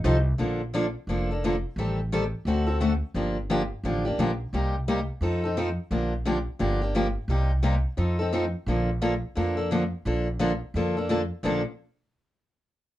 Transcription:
0.04 C2 F3 C4 D#4 A4
0.38 A#1 D3 F3 A#3 D4 A4
0.74 D3 F3 A#3 D4 A4
1.07 F1 D3 F3 A#3 D4 A4
1.31 A#3 D4 A4
1.44 D3 F3 A#3 D4 A4
1.76 A1 D#3 G3 C4 G4 A4
2.12 D#3 G3 C4 G4 A4
2.45 D2 D3 A3 C4 F#4 A4
2.67 C4 F#4 A4
2.80 D3 A3 C4 F#4 A4
3.14 G1 D3 F3 A#3 D4 G4
3.50 D3 F3 A#3 D4 G4
3.83 A1 D3 F3 A#3 D4 G4
4.05 A#3 D4 G4
4.18 A#1 D3 F3 A#3 D4 G4
4.53 C2 C3 G3 A#3 D#4 G4
4.88 C3 G3 A#3 D#4 G4
5.21 F2 F3 C4 D#4 A4
5.44 C4 D#4 A4
5.57 F3 C4 D#4 A4
5.91 A#1 D3 F3 A#3 D4 G4
6.25 D3 F3 A#3 D4 G4
6.59 G1 D3 F3 A#3 D4 G4
6.82 A#3 D4 G4
6.95 D3 F3 A#3 D4 G4
7.28 C2 C3 G3 A#3 D#4 G4
7.63 C3 G3 A#3 D#4 G4
7.97 F2 F3 C4 D#4 A4
8.19 C4 D#4 A4
8.33 F3 C4 D#4 A4
8.66 A#1 D3 F3 A#3 D4 A4
9.02 D3 F3 A#3 D4 A4
9.36 F2 D3 F3 A#3 D4 A4
9.57 A#3 D4 A4
9.71 D3 F3 A#3 D4 A4
10.05 A#1 D3 F3 A#3 D4 A4
10.39 D3 F3 A#3 D4 A4
10.74 F2 D3 F3 A#3 D4 A4
10.97 A#3 D4 A4
11.09 D3 F3 A#3 D4 A4
11.43 A#1 A#2 D3 F3 A#3 D4 A4

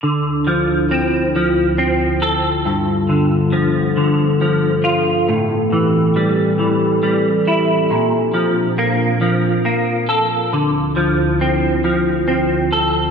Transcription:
0.03 D2 D3 E4 F4 C5
0.47 F3
0.91 C4
1.36 F3
1.78 C4
2.22 A4
2.63 G2 B3 A4
3.09 D3
3.52 F3
3.97 D3
4.41 F3
4.84 F4
5.27 A2 E3 C4 G4
5.72 E3
6.16 G3
6.59 E3
7.03 G3
7.47 E4
7.90 A#2 F3 D4
8.34 F3
8.78 A#3
9.21 F3
9.65 A#3
10.09 A4
10.52 D2 D3 E4 F4
10.96 F3
11.41 C4
11.84 F3
12.28 C4
12.72 A4

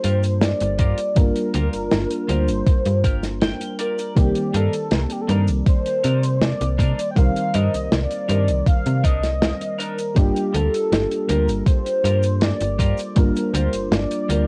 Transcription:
Already playing: G3 A#3 D4 F4 G4 A#4 C5
0.04 G2 F4 G4 A#4, closed hi-hat
0.23 closed hi-hat, cabasa
0.41 D5, snare, closed hi-hat, cabasa
0.60 G1, closed hi-hat, cabasa
0.79 G2 F4 G4 A#4 D5, kick, closed hi-hat
0.98 closed hi-hat, cabasa
1.15 G1 G3 A#3 D4 F4 A#4, kick, closed hi-hat, cabasa
1.36 closed hi-hat, cabasa
1.54 D2 F4 G4 A#4, closed hi-hat
1.73 G1, closed hi-hat, cabasa
1.91 G1, snare, closed hi-hat, cabasa
2.10 closed hi-hat, cabasa
2.28 D2 G3 A#3 D4 F4 G4 A#4 C5, closed hi-hat
2.48 G1, closed hi-hat, cabasa
2.67 kick, closed hi-hat, cabasa
2.85 G2, closed hi-hat, cabasa
3.04 G1 F4 G4 A#4, kick, closed hi-hat
3.23 snare, closed hi-hat, cabasa
3.42 G5, snare, closed hi-hat, cabasa
3.61 closed hi-hat, cabasa
3.79 F4 G4 A#4 D5, closed hi-hat
3.98 closed hi-hat, cabasa
4.15 C2 D#3 G3 A#3 C4 G4 D5, kick, closed hi-hat, cabasa
4.35 closed hi-hat, cabasa
4.54 G2 D4 D#4 A4 A#4, closed hi-hat
4.73 closed hi-hat, cabasa
4.91 C2 A#4, snare, closed hi-hat, cabasa
5.03 A4
5.10 G4, closed hi-hat, cabasa
5.21 A4
5.28 G2 D#3 G3 C4 D4 D#4 A#4 D5, closed hi-hat
5.48 C2, closed hi-hat, cabasa
5.66 C5, kick, closed hi-hat, cabasa
5.86 closed hi-hat, cabasa
6.04 C3 D4 D#4 A#4, closed hi-hat
6.23 closed hi-hat, cabasa
6.42 D5, snare, closed hi-hat, cabasa
6.61 C2, closed hi-hat, cabasa
6.78 C3 D4 D#4 A#4 D5, kick, closed hi-hat
6.99 closed hi-hat, cabasa
7.11 G5
7.15 C2 D#3 G3 C4 A#4 C5 F5, kick, closed hi-hat, cabasa
7.36 closed hi-hat, cabasa
7.54 G2 D4 D#4 A#4 D#5, closed hi-hat
7.74 C2, closed hi-hat, cabasa
7.92 C2 D5, snare, closed hi-hat, cabasa
8.11 closed hi-hat, cabasa
8.28 G2 D#3 G3 C4 D4 D#4 A#4 C5, closed hi-hat
8.48 C2, closed hi-hat, cabasa
8.66 F5, kick, closed hi-hat, cabasa
8.86 C3, closed hi-hat, cabasa
9.04 C2 D4 D#4 A#4 D#5, kick, closed hi-hat
9.23 snare, closed hi-hat, cabasa
9.42 snare, closed hi-hat, cabasa
9.61 closed hi-hat, cabasa
9.78 D4 D#4 A#4, closed hi-hat
9.99 closed hi-hat, cabasa
10.15 G1 G3 A#3 D4 F4 G4, kick, closed hi-hat, cabasa
10.36 closed hi-hat, cabasa
10.54 D2 F4 G4 A4 A#4, closed hi-hat
10.74 closed hi-hat, cabasa
10.92 G1, snare, closed hi-hat, cabasa
11.11 closed hi-hat, cabasa
11.27 D2 G3 A#3 D4 F4 G4 A#4, closed hi-hat
11.48 G1, closed hi-hat, cabasa
11.66 C5, kick, closed hi-hat, cabasa
11.86 closed hi-hat, cabasa
12.04 G2 F4 G4 A#4, closed hi-hat
12.23 closed hi-hat, cabasa
12.41 D5, snare, closed hi-hat, cabasa
12.61 G1, closed hi-hat, cabasa
12.79 G2 F4 G4 A#4 D5, kick, closed hi-hat
12.97 closed hi-hat, cabasa
13.15 G1 G3 A#3 D4 F4 A#4, kick, closed hi-hat, cabasa
13.36 closed hi-hat, cabasa
13.53 D2 F4 G4 A#4 C5, closed hi-hat
13.73 G1, closed hi-hat, cabasa
13.91 G1 D5, snare, closed hi-hat, cabasa
14.11 closed hi-hat, cabasa
14.28 D2 G3 A#3 D4 F4 G4 A#4, closed hi-hat

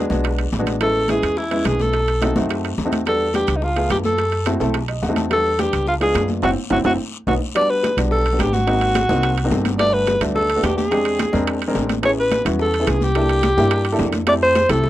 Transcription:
Already playing: G#4
0.10 B1 G#3 B3 D4 F#4, high bongo, high conga, short guiro
0.24 high bongo, high conga, high timbale, long guiro
0.39 high bongo, high conga, high timbale
0.52 A1, high bongo, low bongo, high conga, low timbale, short guiro
0.59 G#3 B3 D4 F#4
0.66 high conga, high timbale, short guiro
0.81 G#3 B3 C#4 E4 A4, high bongo, high conga, high timbale, long guiro
0.95 high conga
1.08 G#3 B3 C#4 E4 G#4, high bongo, high conga, high timbale, short guiro
1.23 E2, high timbale, short guiro
1.37 E4, high bongo, high conga, long guiro
1.51 G#3 B3 C#4 E4, high conga, high timbale
1.65 B1 G#4, high bongo, low bongo, high conga, high timbale, short guiro
1.80 A4, high conga, short guiro
1.93 high bongo, high conga, high timbale, long guiro
2.08 high bongo, high conga, high timbale
2.21 A3 C4 D#4 F#4, high bongo, high conga, high timbale, short guiro
2.36 F#2 A3 C4 D#4 F#4, high bongo, high conga, short guiro
2.49 high bongo, high timbale, long guiro
2.64 high bongo, high conga, high timbale
2.78 E2, high bongo, low bongo, high conga, short guiro
2.85 A3 C4 D#4 F#4
2.92 high conga, high timbale, short guiro
3.06 G3 B3 D4 F#4 A4, high bongo, high conga, high timbale, long guiro
3.20 high conga
3.33 G3 B3 D4 F#4 G4, high bongo, high conga, high timbale, short guiro
3.47 C#2, high timbale, short guiro
3.56 D#4
3.62 F4, high bongo, high conga, long guiro
3.76 A3 B3 F4 G#4, high conga, high timbale
3.90 F#2 G4, high bongo, low bongo, high conga, high timbale, low timbale, short guiro
4.04 A4, high conga, short guiro
4.18 high bongo, high conga, high timbale, long guiro
4.32 high bongo, high conga, high timbale
4.46 A3 C4 E4 F#4, high bongo, high conga, high timbale, short guiro
4.60 B1 A3 C4 E4 A4, high bongo, high conga, short guiro
4.74 high bongo, high conga, high timbale, long guiro
4.88 D#5, high bongo, high conga, high timbale
5.03 E2 F#5, high bongo, low bongo, high conga, short guiro
5.09 A3 C4 D#4 F#4
5.16 A5, high conga, high timbale, short guiro
5.30 G3 B3 D4 F#4 A4, high bongo, high conga, high timbale, long guiro
5.45 high conga
5.58 G3 B3 D4 G4, high bongo, high conga, high timbale, short guiro
5.73 C#2, high timbale, short guiro
5.87 F4, high bongo, high conga, long guiro
6.00 G#3 B3 D4 F4 G#4, high conga, high timbale
6.14 F#2, high bongo, low bongo, high conga, high timbale, low timbale, short guiro
6.28 high conga, short guiro
6.42 F#1 C4 E4 F#4, low bongo, high conga, high timbale, long guiro
6.70 F#1 C4 E4 F#4, low bongo, high conga, high timbale, long guiro
6.84 F#1 C4 E4 F#4, low bongo, high conga, high timbale, long guiro
7.27 B1 B3 D#4 F#4, low bongo, high conga, high timbale, long guiro
7.55 G3 B3 D4 F#4 D5, high bongo, high conga, high timbale
7.70 B4, high conga
7.83 high bongo, high conga, high timbale, short guiro
7.97 B1 G3 B3 D4 F#4, low conga, high timbale, short guiro
8.11 A4, high bongo, long guiro
8.26 high timbale
8.32 G3 B3 D4 F#4
8.39 G#1 G4, high bongo, low bongo, high conga, high timbale, low timbale, short guiro
8.53 F#4, high conga, short guiro
8.67 A#3 C4 D#4 F#4, high bongo, high conga, high timbale, long guiro
8.81 high bongo, high conga, high timbale
8.95 high bongo, high conga, high timbale, short guiro
9.09 C2 A#3 C4 D#4 F#4, high conga, short guiro
9.24 high bongo, high timbale, long guiro
9.38 high bongo, high conga, high timbale
9.44 A#3 C4 D#4 F#4
9.51 G1, high bongo, low bongo, high conga, low timbale, short guiro
9.65 high conga, high timbale, short guiro
9.79 A3 B3 D4 F#4 D5, high bongo, high conga, high timbale, long guiro
9.94 B4, high conga
10.07 high bongo, high conga, high timbale, short guiro
10.21 D2 A3 B3 D4 F#4, low conga, high timbale, short guiro
10.35 A4, high bongo, high conga, low conga, long guiro
10.50 high conga, high timbale
10.56 A3 B3 D4 F#4
10.63 E2 G4, high bongo, low bongo, high conga, high timbale, low timbale, short guiro
10.78 G#4, high conga, short guiro
10.91 G#3 C4 D4 G4, high bongo, high conga, high timbale, long guiro
11.05 high bongo, high conga, high timbale
11.19 high bongo, high conga, high timbale, short guiro
11.33 E2 G#3 C4 D4 A#4, high bongo, high conga, short guiro
11.47 high bongo, high conga, high timbale, long guiro
11.62 high bongo, high conga, high timbale
11.68 G#3 C4 D4 A#4
11.75 A1, high bongo, low bongo, high conga, low timbale, short guiro
11.90 high conga, high timbale, short guiro
12.03 B3 C#4 E4 G#4 C#5, high bongo, high conga, high timbale, long guiro
12.18 B4, high conga
12.31 high bongo, high conga, high timbale, short guiro
12.45 E2 B3 C#4 E4 F#4, low conga, high timbale, short guiro
12.59 A4, high bongo, long guiro
12.73 high conga, high timbale
12.80 B3 C#4 E4 G#4
12.87 C2 G#4, high bongo, low bongo, high conga, high timbale, short guiro
13.01 G4, high conga, short guiro
13.15 A#3 D4 E4 A4, high bongo, high conga, high timbale, long guiro
13.29 high bongo, high conga, high timbale
13.43 high bongo, high conga, high timbale, short guiro
13.57 G2 A#3 D4 E4 G4, high conga, short guiro
13.71 high bongo, high timbale, long guiro
13.85 high bongo, high conga, high timbale
13.92 A#3 D4 E4 A4
13.99 F2, high bongo, low bongo, high conga, low timbale, short guiro
14.12 high conga, high timbale, short guiro
14.27 A3 C4 E4 G4 D5, high bongo, high conga, high timbale, long guiro
14.41 C5, high conga
14.55 high bongo, high conga, high timbale, short guiro
14.69 C2 A3 C4 E4 G4 A4, low conga, high timbale, short guiro
14.83 high bongo, high conga, low conga, long guiro

